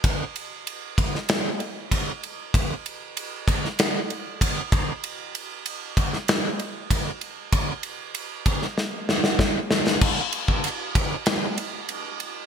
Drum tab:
CC |----------------|----------------|----------------|----------------|
RD |x-x-x-x-x-x-x-x-|x-x-x-x-x-x-x-x-|x-x-x-x-x-x-x-x-|x-x-x-x---------|
SD |-------oo-------|-------oo-------|-------oo-------|-------oo-ooo-oo|
BD |o-----o-----o---|o-----o-----o-o-|------o-----o---|o-----o-----o---|

CC |x---------------|
RD |--x-x-x-x-x-x-x-|
SD |--------o-------|
BD |o--o--o---------|